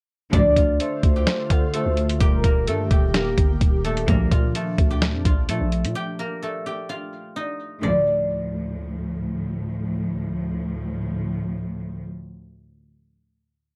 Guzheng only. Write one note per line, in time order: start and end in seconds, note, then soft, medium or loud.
0.33 3.13 D4 medium
0.33 2.19 D5 medium
0.57 1.50 F4 medium
0.57 1.51 F5 medium
0.80 1.74 A3 medium
0.80 1.73 A4 medium
1.16 2.20 G4 medium
1.16 2.21 G5 medium
1.50 4.02 F4 medium
1.50 3.17 F5 medium
1.74 2.50 A3 medium
1.74 2.50 A4 medium
2.20 2.90 G4 loud
2.20 2.91 G5 medium
2.44 2.74 A#3 medium
2.44 2.74 A#4 medium
2.68 3.20 A3 medium
2.68 3.20 A4 medium
2.91 4.90 G4 medium
2.91 4.47 G5 medium
3.14 3.91 A#3 medium
3.14 3.91 A#4 medium
3.85 4.14 A3 medium
3.85 4.14 A4 medium
4.08 4.61 A#3 medium
4.08 4.61 A#4 medium
4.31 5.25 F4 medium
4.31 5.26 F5 medium
4.55 5.49 A3 medium
4.55 5.48 A4 medium
4.91 5.95 G4 medium
4.91 5.96 G5 medium
5.25 6.89 F4 medium
5.25 6.90 F5 medium
5.49 6.25 A3 medium
5.49 6.25 A4 medium
5.95 6.66 G4 loud
5.95 6.67 G5 medium
6.19 6.48 A#3 medium
6.19 6.48 A#4 medium
6.42 9.76 A3 medium
6.42 8.62 A4 medium
6.66 9.01 G4 medium
6.66 8.22 G5 medium
6.89 9.41 F4 medium
6.89 8.56 F5 medium
7.36 7.89 D#4 medium
7.36 7.89 D#5 medium
7.83 9.68 D5 medium